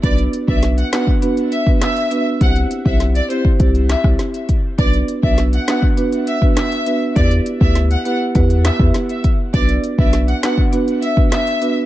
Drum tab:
HH |xxx-xxx-xxx-xxx-|xxx-xxx-xxx-xxx-|xxx-xxx-xxx-xxx-|xxx-xxx-xxx-xxx-|
CP |------x-----x---|----------x-----|------x-----x---|----------x-----|
SD |----o-o-----o---|----o-----oro---|----o-o-----o---|----o-----o-o---|
BD |o--o---o---o----|o--o---oo--o--o-|o--o---o---o----|o--o----o--o--o-|

HH |xxx-xxx-xxx-xxx-|
CP |------x-----x---|
SD |----o-o-----o---|
BD |o--o---o---o----|